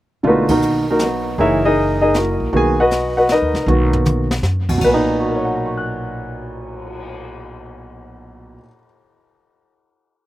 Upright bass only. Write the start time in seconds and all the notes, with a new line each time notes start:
0.24 B1
1.38 F#1
2.40 A#1
2.53 B1
3.42 D#2
3.54 C2
3.66 B1
4.42 F#2
4.82 B1